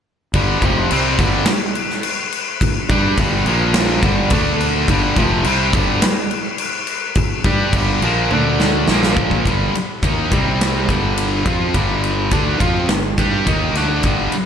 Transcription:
0.34 fingered electric bass G1, distorted electric guitar G2 D3 G3, kick, crash
0.61 fingered electric bass F1, distorted electric guitar F2 C3 F3, kick, crash
0.91 fingered electric bass C2, distorted electric guitar C3 G3 C4, crash
1.19 fingered electric bass G1, distorted electric guitar G2 D3 G3, kick, crash
1.46 snare, crash
1.75 crash
1.90 snare
2.03 crash
2.32 crash
2.61 kick, crash
2.89 fingered electric bass G2, distorted electric guitar G3 D4 G4, kick, crash
3.17 fingered electric bass G1, distorted electric guitar G2 D3 G3, kick, crash
3.46 fingered electric bass A#1, distorted electric guitar A#2 F3 A#3, crash
3.74 snare, crash
4.03 fingered electric bass G1, distorted electric guitar G2 D3 G3, kick, crash
4.30 fingered electric bass D2, distorted electric guitar D3 A3 D4, kick, crash
4.61 crash
4.88 fingered electric bass G1, distorted electric guitar G2 D3 G3, kick, crash
5.16 fingered electric bass F1, distorted electric guitar F2 C3 F3, kick, crash
5.44 fingered electric bass C2, distorted electric guitar C3 G3 C4, crash
5.73 fingered electric bass G1, distorted electric guitar G2 D3 G3, kick, crash
6.02 snare, crash
6.31 crash
6.58 crash
6.87 crash
7.15 kick, crash
7.44 fingered electric bass G2, distorted electric guitar G3 D4 G4, kick, crash
7.73 fingered electric bass G1, distorted electric guitar G2 D3 G3, kick, crash
8.02 fingered electric bass A#1, distorted electric guitar A#2 F3 A#3, crash
8.31 fingered electric bass D2, distorted electric guitar D3 A3 D4, high tom
8.60 snare
8.88 fingered electric bass A#1, distorted electric guitar A#2 F3 A#3, snare
9.03 snare
9.17 kick
9.31 kick
9.45 fingered electric bass G1, distorted electric guitar G2 D3 G3, kick, ride
9.75 muted fingered electric bass stroke, muted distorted electric guitar stroke, ride
10.02 fingered electric bass D#2, distorted electric guitar D#3 A#3 D#4, kick, ride
10.32 fingered electric bass C2, distorted electric guitar C3 G3 C4, kick, ride
10.61 snare, ride
10.88 fingered electric bass G1, distorted electric guitar G2 D3 G3, kick, ride
11.17 ride
11.46 fingered electric bass F2, distorted electric guitar F3 C4 F4, kick, ride
11.74 fingered electric bass G1, distorted electric guitar G2 D3 G3, kick, ride
12.04 ride
12.31 fingered electric bass D2, distorted electric guitar D3 A3 D4, kick, ride
12.60 fingered electric bass F2, distorted electric guitar F3 C4 F4, kick, ride
12.88 fingered electric bass G1, distorted electric guitar G2 D3, snare, ride
13.17 fingered electric bass G2, distorted electric guitar G3 D4 G4, kick, ride
13.46 fingered electric bass D#2, distorted electric guitar D#3 A#3 D#4, kick, ride
13.73 fingered electric bass D2, distorted electric guitar D3 A3, snare, ride
13.77 distorted electric guitar D4
14.03 fingered electric bass G1, distorted electric guitar G2 D3 G3, kick, ride
14.32 muted fingered electric bass stroke, muted distorted electric guitar stroke, ride

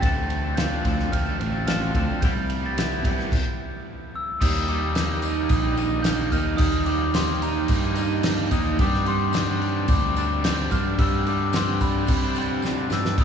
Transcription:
Already playing: overdriven electric guitar C4
0.01 fingered electric bass D2, clean electric guitar D3 F3 C4 D4 A4, overdriven electric guitar A3, glockenspiel A6, kick, ride
0.17 muted clean electric guitar stroke
0.30 ride
0.43 clean electric guitar C4 D4 A4
0.56 clean electric guitar D3 F3 C4, overdriven electric guitar F4, glockenspiel G6, snare, ride
0.60 clean electric guitar D4 A4
0.84 fingered electric bass D2, clean electric guitar F3 C4 D4, kick, ride
0.88 clean electric guitar A4
0.99 snare
1.12 fingered electric bass D2, overdriven electric guitar A3, glockenspiel F6, kick, ride
1.26 clean electric guitar C4 D4 A4
1.40 fingered electric bass A1, overdriven electric guitar C4, muted clean electric guitar stroke, ride
1.52 clean electric guitar C4 D4 A4
1.66 clean electric guitar D3 F3 C4 D4 A4, overdriven electric guitar F4, glockenspiel F6, snare, ride
1.94 fingered electric bass D2, clean electric guitar F3 C4 D4 A4, kick, ride
2.08 clean electric guitar C4 D4 A4
2.21 fingered electric bass C2, clean electric guitar C3 G3 B3 E4 G4, glockenspiel G6, kick, ride
2.36 muted clean electric guitar stroke
2.50 ride
2.63 clean electric guitar B3 E4 G4, glockenspiel A6
2.77 clean electric guitar C3 G3 B3 E4 G4, snare, ride
3.04 fingered electric bass C2, clean electric guitar G3 B3 E4 G4, glockenspiel G6, kick, ride
3.20 snare
3.32 kick, crash
4.16 glockenspiel E6
4.41 fingered electric bass D#2, clean electric guitar D#3 G3 A#3, glockenspiel D#6, kick, crash, tambourine
4.45 clean electric guitar D#4
4.68 clean electric guitar D#3 G3 A#3 D#4, glockenspiel D6, crash
4.82 clean electric guitar G3 A#3 D#4
4.95 clean electric guitar D#3 G3 A#3 D#4, snare, tambourine, crash
5.22 overdriven electric guitar D#4, tambourine, crash
5.36 clean electric guitar G3 A#3 D#4
5.49 fingered electric bass A#1, overdriven electric guitar G3, glockenspiel D#6, kick, tambourine, crash
5.63 clean electric guitar G3 A#3 D#4
5.76 clean electric guitar D#3 G3 A#3 D#4, tambourine, crash
5.90 clean electric guitar G3 A#3 D#4
6.03 clean electric guitar D#3 G3, glockenspiel G6, snare, tambourine, crash
6.07 clean electric guitar A#3 D#4
6.32 fingered electric bass D#2, clean electric guitar D#3 G3 A#3 D#4, glockenspiel F6, kick, tambourine, crash
6.46 clean electric guitar G3 A#3 D#4
6.57 fingered electric bass D#2, clean electric guitar D#3 G3 A#3 D#4, glockenspiel D#6, kick, tambourine, crash
6.85 clean electric guitar D#3 G3 A#3 D#4, glockenspiel D6, crash
7.00 clean electric guitar G3 A#3 D#4
7.14 clean electric guitar D#3 G3 A#3 D#4, glockenspiel C6, snare, tambourine, crash
7.42 overdriven electric guitar D#4, glockenspiel A#5, tambourine, crash
7.54 clean electric guitar G3 A#3 D#4
7.68 fingered electric bass G2, overdriven electric guitar G3, kick, tambourine, crash
7.82 clean electric guitar G3 A#3 D#4
7.96 clean electric guitar D#3 G3 A#3 D#4, tambourine, crash
8.10 clean electric guitar G3 A#3 D#4
8.22 clean electric guitar D#3 G3 A#3 D#4, snare, tambourine, crash
8.50 fingered electric bass D#2, clean electric guitar D#3 G3 A#3 D#4, glockenspiel D#6, kick, tambourine, crash
8.64 clean electric guitar G3 A#3 D#4
8.78 clean electric guitar G2 D3 G3 C4 D4, fingered electric bass G2, glockenspiel D6, kick, tambourine, crash
8.94 snare
9.05 clean electric guitar D3 G3 C4 D4, glockenspiel C6, crash
9.19 clean electric guitar G3 C4 D4
9.33 clean electric guitar G2 D3 G3 C4 D4, snare, tambourine, crash
9.62 overdriven electric guitar D4, crash
9.75 clean electric guitar G3 C4 D4
9.88 fingered electric bass D2, overdriven electric guitar G3, glockenspiel D6, kick, tambourine, crash
10.03 clean electric guitar G3 C4 D4
10.16 clean electric guitar D3 G3 C4 D4, tambourine, crash
10.29 clean electric guitar G3 C4 D4
10.43 clean electric guitar G2 D3 G3 C4 D4, glockenspiel G6, snare, tambourine, crash
10.71 fingered electric bass G2, clean electric guitar D3 G3 C4 D4, glockenspiel F6, kick, tambourine, crash
10.86 clean electric guitar G3 C4 D4
10.98 fingered electric bass G2, clean electric guitar G2 D3 G3 C4 D4, glockenspiel E6, kick, crash
11.26 clean electric guitar D3 G3 C4 D4, glockenspiel D6, crash
11.40 clean electric guitar G3 C4 D4
11.53 clean electric guitar G2 D3 G3 C4, glockenspiel C6, snare, tambourine, crash
11.57 clean electric guitar D4
11.80 overdriven electric guitar D4, glockenspiel B5, kick, tambourine, crash
11.95 clean electric guitar G3 C4 D4
12.07 fingered electric bass C3, overdriven electric guitar G3, kick, tambourine, crash
12.23 clean electric guitar G3 C4 D4
12.35 clean electric guitar D3 G3 C4, overdriven electric guitar D4, tambourine, crash
12.40 clean electric guitar D4
12.50 clean electric guitar G3 C4 D4
12.62 clean electric guitar G2 D3 G3 C4 D4, snare, tambourine
12.90 fingered electric bass G2, clean electric guitar D3 G3 C4 D4, glockenspiel E6, snare, tambourine
13.04 clean electric guitar G3 C4 D4, snare
13.17 fingered electric bass D#2, clean electric guitar D#3 G3 A#3 D#4, glockenspiel D#6, kick, tambourine, crash

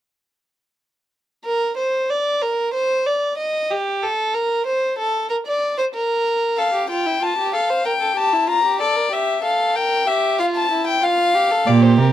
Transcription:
1.45 violin A#4
1.77 violin C5
2.10 violin D5
2.42 violin A#4
2.74 violin C5
3.06 violin D5
3.38 violin D#5
3.71 violin G4
4.03 violin A4
4.34 violin A#4
4.66 violin C5
4.99 violin A4
5.29 violin A#4
5.47 violin D5
5.78 violin C5
5.94 violin A#4
6.58 violin A4 F5
6.74 violin G4
6.90 violin F4 G5
7.06 violin E4
7.22 violin F4 A5
7.38 violin G4
7.53 violin A4 F5
7.70 violin C5
7.85 violin A#4 G5
8.01 violin A4
8.16 violin G4 A5
8.33 violin E4
8.48 violin F4 A#5
8.64 violin G4
8.80 violin A4 D5
8.96 violin A#4
9.11 violin G4 E5
9.43 violin A4 F5
9.75 violin A#4 G5
10.07 violin G4 E5
10.39 violin F4 F5
10.55 violin A5
10.71 violin E4
10.87 violin G5
11.03 violin F4 F5
11.35 violin G4
11.51 violin A4
11.67 cello A#2, violin G4 D5
11.82 violin C5
11.98 cello C3, violin A#4

